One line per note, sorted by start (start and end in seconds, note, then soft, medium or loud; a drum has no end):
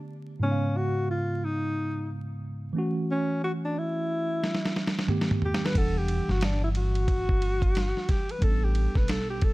0.00 0.37 D3 medium
0.00 0.38 A3 medium
0.00 0.38 B3 medium
0.00 0.42 G4 medium
0.40 2.70 G#2 medium
0.40 2.71 C#3 medium
0.40 2.71 G#3 medium
0.40 2.72 B3 medium
0.40 0.78 C#4 medium
0.45 0.51 D#4 medium
0.51 2.76 F5 medium
0.77 1.09 F#4 loud
1.11 1.46 F4 medium
1.45 2.10 D#4 medium
2.73 5.04 E3 medium
2.73 5.04 A3 medium
2.73 5.05 C#4 medium
2.78 5.06 F#4 medium
3.11 3.41 C#4 medium
3.44 3.52 F#4 medium
3.65 3.80 D4 medium
3.78 5.10 E4 medium
4.44 snare medium
4.55 snare soft
4.65 snare medium
4.76 snare medium
4.87 snare medium
4.99 snare medium
5.07 5.75 D#3 medium
5.07 5.75 A3 medium
5.07 5.76 B3 medium
5.07 5.76 G4 medium
5.07 mid tom medium
5.21 snare medium
5.31 mid tom medium
5.42 5.67 G4 medium
5.42 floor tom medium
5.54 snare medium
5.65 5.79 B4 medium
5.65 snare medium
5.72 6.19 E1 medium
5.72 8.37 E3 medium
5.72 8.37 G3 soft
5.72 8.38 D4 medium
5.72 kick loud
5.72 ride medium
5.78 5.99 A4 loud
5.78 8.39 F#5 medium
5.98 6.33 G4 medium
6.08 ride medium
6.28 7.91 G1 medium
6.28 6.46 F#4 medium
6.28 snare soft
6.41 6.63 D4 medium
6.41 snare loud
6.41 hi-hat pedal soft
6.41 ride medium
6.64 6.70 E4 medium
6.75 8.12 F#4 loud
6.75 ride soft
6.95 ride soft
7.08 kick medium
7.08 ride medium
7.29 kick medium
7.42 ride medium
7.62 kick medium
7.62 ride soft
7.75 snare medium
7.75 hi-hat pedal soft
7.75 ride medium
7.97 snare soft
8.09 8.33 G4 medium
8.09 kick medium
8.09 snare soft
8.09 ride medium
8.29 8.45 B4 medium
8.29 ride soft
8.39 8.85 A1 medium
8.39 9.53 G3 medium
8.39 9.53 B3 medium
8.39 8.50 C#4 soft
8.39 kick loud
8.39 ride medium
8.43 8.66 A4 loud
8.43 9.53 A4 medium
8.49 9.53 D4 medium
8.64 8.98 G4 medium
8.75 ride medium
8.95 9.53 B1 medium
8.95 9.12 B4 medium
8.95 kick medium
8.95 snare soft
9.08 9.30 A4 medium
9.08 snare loud
9.08 hi-hat pedal soft
9.08 ride medium
9.30 9.46 G4 medium
9.41 9.53 A4 loud
9.41 kick medium
9.41 ride soft